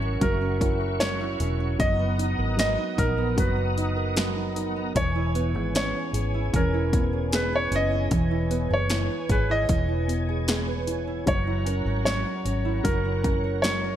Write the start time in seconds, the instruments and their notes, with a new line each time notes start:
Already playing: fingered electric bass G#1, steel-string acoustic guitar F#3 E4 A#4, grand piano F#3 C#4 C#5, tonewheel organ A#4 E5 F#5 C#6
0.02 steel-string acoustic guitar C#4
0.21 fingered electric bass F#1, steel-string acoustic guitar F#3, grand piano F#3 A#4, kick, closed hi-hat
0.41 steel-string acoustic guitar C#4
0.60 grand piano C#4, steel-string acoustic guitar E4, kick, closed hi-hat
0.80 steel-string acoustic guitar A#4
1.00 grand piano F#3 C#5, steel-string acoustic guitar C#4, snare, closed hi-hat
1.20 steel-string acoustic guitar E4
1.40 fingered electric bass E1, grand piano C#4, steel-string acoustic guitar A#4, closed hi-hat
1.60 steel-string acoustic guitar C#4
1.79 fingered electric bass F#1, grand piano F#3 D#5, steel-string acoustic guitar F#3, tonewheel organ B3 A#5 D#6, kick, closed hi-hat
1.99 steel-string acoustic guitar B3
2.18 grand piano D#4, steel-string acoustic guitar D#4, closed hi-hat
2.38 fingered electric bass G#1, steel-string acoustic guitar A#4
2.57 grand piano F#3 D#5, steel-string acoustic guitar B3, snare, closed hi-hat
2.78 steel-string acoustic guitar D#4
2.97 fingered electric bass A#1, grand piano D#4 A#4, kick, closed hi-hat
3.18 steel-string acoustic guitar B3
3.37 fingered electric bass F#1, grand piano F#3 B4, steel-string acoustic guitar F#3, kick, closed hi-hat
3.57 steel-string acoustic guitar B3
3.77 steel-string acoustic guitar D#4, grand piano D#4, closed hi-hat
3.96 steel-string acoustic guitar A#4
4.16 grand piano F#3, steel-string acoustic guitar B3, snare, closed hi-hat
4.36 steel-string acoustic guitar D#4
4.56 grand piano D#4, steel-string acoustic guitar A#4, closed hi-hat
4.76 steel-string acoustic guitar B3
4.95 fingered electric bass E1, grand piano E3 C#5, steel-string acoustic guitar E3, tonewheel organ C#5 G#5, kick, closed hi-hat
5.15 steel-string acoustic guitar E4
5.35 grand piano B3, steel-string acoustic guitar B4, closed hi-hat
5.55 fingered electric bass G#1, steel-string acoustic guitar G#4
5.74 steel-string acoustic guitar B3, grand piano C#4 C#5, snare, closed hi-hat
6.13 fingered electric bass G#1, grand piano G#4, steel-string acoustic guitar G#4, closed hi-hat
6.34 steel-string acoustic guitar E4
6.53 fingered electric bass E1, steel-string acoustic guitar E3, grand piano C#4 A#4, kick, closed hi-hat
6.74 steel-string acoustic guitar E4
6.92 grand piano B3, kick, closed hi-hat
7.13 steel-string acoustic guitar G#4
7.32 steel-string acoustic guitar B3, grand piano G#4 B4, snare, closed hi-hat
7.53 steel-string acoustic guitar B4, grand piano C#5
7.71 fingered electric bass F#1, grand piano C#4, steel-string acoustic guitar G#4, closed hi-hat
7.76 grand piano D#5
7.92 steel-string acoustic guitar E4
8.11 fingered electric bass E1, grand piano E3, steel-string acoustic guitar E3, tonewheel organ C#5 G#5, kick, closed hi-hat
8.31 steel-string acoustic guitar E4
8.50 grand piano B3, steel-string acoustic guitar B4, closed hi-hat
8.70 fingered electric bass F#1, steel-string acoustic guitar G#4, grand piano C#5
8.90 steel-string acoustic guitar B3, grand piano E4, snare, closed hi-hat
9.11 steel-string acoustic guitar B4
9.29 fingered electric bass G#1, steel-string acoustic guitar G#4, grand piano G#4 B4, kick, closed hi-hat
9.50 steel-string acoustic guitar E4, grand piano D#5
9.69 fingered electric bass E1, steel-string acoustic guitar E3, grand piano E4, kick, closed hi-hat
9.89 steel-string acoustic guitar E4
10.07 grand piano B3, steel-string acoustic guitar B4, closed hi-hat
10.29 steel-string acoustic guitar G#4
10.47 steel-string acoustic guitar B3, grand piano G#4, snare, closed hi-hat
10.68 steel-string acoustic guitar B4
10.87 grand piano E4, steel-string acoustic guitar G#4, closed hi-hat
11.07 steel-string acoustic guitar E4
11.26 fingered electric bass F#1, grand piano F#3 C#5, steel-string acoustic guitar F#3, tonewheel organ F#5 A#5, kick, closed hi-hat
11.47 steel-string acoustic guitar E4
11.65 grand piano C#4, steel-string acoustic guitar A#4, closed hi-hat
11.85 fingered electric bass G#1, steel-string acoustic guitar C#5
12.05 grand piano F#3 C#5, steel-string acoustic guitar C#4, snare, closed hi-hat
12.26 steel-string acoustic guitar A#4
12.44 fingered electric bass G#1, grand piano C#4, steel-string acoustic guitar C#5, closed hi-hat
12.65 steel-string acoustic guitar E4
12.84 fingered electric bass F#1, grand piano F#3 A#4, steel-string acoustic guitar F#3, kick, closed hi-hat
13.05 steel-string acoustic guitar E4
13.23 grand piano C#4, steel-string acoustic guitar A#4, kick, closed hi-hat
13.44 steel-string acoustic guitar C#5
13.62 grand piano F#3 C#5, steel-string acoustic guitar C#4, snare, closed hi-hat
13.84 steel-string acoustic guitar A#4